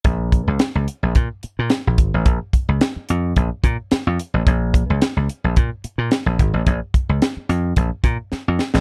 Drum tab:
HH |x-x-x-x-x-x-x-x-|x-x-x-x-x-x-x-x-|x-x-x-x-x-x-x-x-|x-x-x-x-x-x-----|
SD |----o-------o---|----o-------o---|----o-------o---|----o-------o-oo|
BD |o-o-----o-----o-|o-o-----o-o-----|o-o-----o-----o-|o-o-----o-o-----|